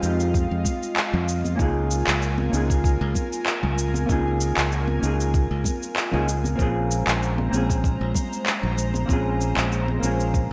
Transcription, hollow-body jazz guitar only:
0.00 1.54 G#3 medium
0.00 1.55 C4 medium
0.00 1.56 D#4 medium
0.04 1.56 F4 medium
0.04 1.57 G4 medium
1.56 2.48 A#3 medium
1.56 2.48 C#4 medium
1.56 2.49 D#4 medium
1.60 2.50 F4 medium
1.60 2.51 G#4 loud
2.50 4.04 A#3 medium
2.50 4.05 C#4 medium
2.50 4.06 D#4 medium
2.54 4.06 F4 medium
2.54 4.07 G#4 medium
4.06 4.98 A#3 medium
4.06 4.98 C#4 medium
4.06 4.99 D#4 medium
4.10 5.00 F4 medium
4.10 5.01 G#4 loud
4.99 6.08 A#3 medium
4.99 6.09 C#4 medium
4.99 6.10 D#4 medium
5.04 6.11 F4 medium
5.04 6.11 G#4 medium
6.11 6.27 A#3 medium
6.11 6.28 C#4 medium
6.11 6.28 D#4 medium
6.11 6.28 F4 medium
6.11 6.29 G#4 medium
6.56 7.48 A#3 medium
6.56 7.48 C4 medium
6.56 7.49 C#4 medium
6.60 7.50 F4 medium
6.60 7.51 G#4 loud
7.50 9.04 A#3 medium
7.50 9.05 C4 medium
7.50 9.06 C#4 medium
7.54 9.06 F4 medium
7.54 9.07 G#4 medium
9.06 9.98 A#3 medium
9.06 9.98 C4 medium
9.06 9.99 C#4 medium
9.10 10.00 F4 medium
9.10 10.01 G#4 loud
9.99 10.53 A#3 medium
9.99 10.53 C4 medium
9.99 10.53 C#4 medium
10.04 10.53 F4 medium
10.04 10.53 G#4 medium

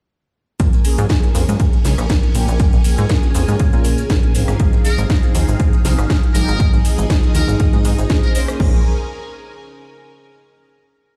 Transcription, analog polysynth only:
0.84 1.06 F3 medium
0.84 1.06 A#3 medium
0.84 1.06 C#4 medium
0.84 1.07 G#4 medium
1.09 1.32 F3 medium
1.09 1.32 A#3 medium
1.09 1.32 C#4 medium
1.09 1.32 G#4 loud
1.34 1.45 F3 loud
1.34 1.45 A#3 medium
1.34 1.45 C#4 medium
1.34 1.45 G#4 loud
1.48 1.61 F3 loud
1.48 1.61 A#3 medium
1.48 1.61 C#4 medium
1.48 1.61 G#4 loud
1.84 1.99 F3 medium
1.84 1.99 A#3 medium
1.84 1.99 C#4 medium
1.84 2.00 G#4 medium
2.34 2.49 F3 medium
2.34 2.49 A#3 medium
2.34 2.49 C#4 medium
2.34 2.50 G4 loud
2.84 3.06 F3 medium
2.84 3.06 A#3 medium
2.84 3.06 C#4 medium
2.84 3.07 G#4 medium
3.09 3.31 F3 medium
3.09 3.31 A#3 medium
3.09 3.31 C#4 medium
3.09 3.31 G#4 medium
3.34 3.46 F3 loud
3.34 3.46 A#3 medium
3.34 3.46 C#4 medium
3.34 3.46 G#4 loud
3.47 4.32 F3 medium
3.47 4.32 A#3 medium
3.47 4.32 C#4 medium
3.47 4.32 G#4 medium
4.34 4.57 F3 medium
4.34 4.57 C4 medium
4.34 4.57 D#4 medium
4.34 4.57 G#4 medium
4.84 5.06 F3 medium
4.84 5.06 C4 medium
4.84 5.06 D#4 medium
4.84 5.07 G#4 medium
5.09 5.32 F3 medium
5.09 5.32 C4 medium
5.09 5.32 D#4 medium
5.09 5.32 G#4 loud
5.35 5.45 F3 loud
5.35 5.45 C4 medium
5.35 5.45 D#4 medium
5.35 5.45 G#4 loud
5.48 5.61 F3 medium
5.48 5.61 C4 medium
5.48 5.61 D#4 medium
5.48 5.61 G#4 loud
5.84 5.99 F3 medium
5.84 5.99 C4 medium
5.84 5.99 D#4 medium
5.84 6.00 G#4 medium
6.35 6.49 F3 medium
6.35 6.49 C4 medium
6.35 6.50 D#4 medium
6.35 6.50 G4 loud
6.85 7.06 F3 medium
6.85 7.07 C4 medium
6.85 7.07 D#4 medium
6.85 7.07 G#4 medium
7.10 7.31 F3 medium
7.10 7.31 C4 medium
7.10 7.32 D#4 medium
7.10 7.32 G#4 medium
7.35 7.46 F3 loud
7.35 7.46 C4 medium
7.35 7.47 D#4 medium
7.35 7.47 G#4 loud
7.48 8.07 F3 medium
7.48 8.07 C4 medium
7.48 8.08 D#4 medium
7.48 8.08 G#4 medium
8.10 8.21 F3 medium
8.10 8.21 C4 medium
8.10 8.22 D#4 medium
8.10 8.22 G#4 loud
8.23 8.33 F3 medium
8.23 8.33 C4 medium
8.23 8.33 D#4 medium
8.23 8.33 C5 medium
8.35 8.58 F3 loud
8.35 8.58 A#3 medium
8.35 8.59 C#4 medium
8.35 8.82 C5 loud
8.59 8.78 F3 medium
8.59 8.79 A#3 medium
8.59 8.79 C#4 medium
8.59 8.79 G#4 loud

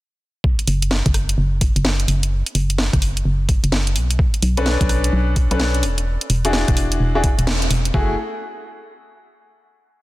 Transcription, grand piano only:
4.57 5.48 C#4 medium
4.57 5.48 D4 medium
4.57 5.48 A4 medium
4.57 5.48 B4 loud
5.51 5.82 C#4 medium
5.51 5.82 D4 medium
5.51 5.82 A4 medium
5.51 5.82 B4 medium
6.45 7.12 D4 medium
6.45 7.12 E4 medium
6.45 7.12 F#4 medium
6.45 7.12 G#4 medium
7.15 7.25 D4 medium
7.15 7.25 E4 medium
7.15 7.25 F#4 medium
7.15 7.25 G#4 medium
7.94 8.13 A3 medium
7.94 8.13 E4 medium
7.94 8.13 F#4 medium
7.94 8.13 G#4 medium

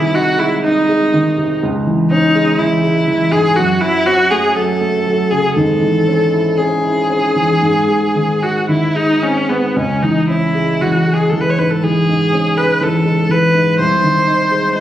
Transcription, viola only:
0.00 0.16 E4 loud
0.15 0.40 F#4 loud
0.39 0.63 E4 medium
0.64 1.60 D#4 medium
2.11 2.60 D#4 loud
2.59 3.33 E4 medium
3.31 3.57 G#4 loud
3.56 3.82 F#4 medium
3.80 4.08 E4 loud
4.06 4.32 F#4 loud
4.30 4.57 G#4 medium
4.55 5.32 A4 medium
5.31 5.54 G#4 medium
5.55 6.59 A4 medium
6.57 8.44 G#4 medium
8.43 8.69 F#4 medium
8.70 8.97 E4 medium
8.96 9.24 D#4 medium
9.23 9.50 C#4 medium
9.49 9.78 B3 medium
9.76 10.04 C#4 medium
10.02 10.28 D#4 medium
10.29 10.83 E4 medium
10.81 11.15 F#4 medium
11.13 11.31 G#4 medium
11.29 11.42 A4 medium
11.41 11.51 B4 medium
11.50 11.60 C#5 medium
11.59 11.72 B4 medium
11.70 11.85 A4 medium
11.84 12.58 G#4 medium
12.57 12.84 B4 medium
12.82 13.32 A4 medium
13.31 13.79 B4 medium
13.79 14.73 C5 medium
14.75 14.80 C5 medium

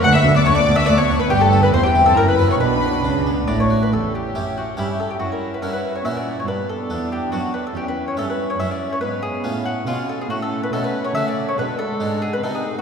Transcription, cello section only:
0.04 0.12 D2 medium
0.25 0.33 D2 medium
0.46 0.54 D2 loud
0.67 0.75 D2 medium
0.88 0.96 D2 loud
1.09 1.17 D2 medium
1.30 1.71 G2 medium
1.73 2.17 E2 medium
2.17 2.60 F#2 medium
2.60 3.03 B2 medium
3.05 3.48 C#3 medium
3.48 3.91 A2 medium
3.93 4.32 E2 medium
4.35 4.75 F#2 soft
4.78 5.17 G2 medium
5.21 5.60 F#2 medium
5.63 6.02 G2 soft
6.06 6.45 A#2 medium
6.48 6.87 G2 medium
6.90 7.29 E2 medium
7.32 7.72 F#2 medium
7.74 8.14 E2 medium
8.17 8.56 G2 medium
8.59 8.99 F#2 medium
9.02 9.41 G#2 medium
9.45 9.84 A2 medium
9.87 10.27 B2 medium
10.29 10.69 A2 medium
10.73 11.12 B2 medium
11.15 11.55 C#3 medium
11.57 11.98 B2 medium
12.01 12.41 G#2 medium
12.44 12.82 C3 medium

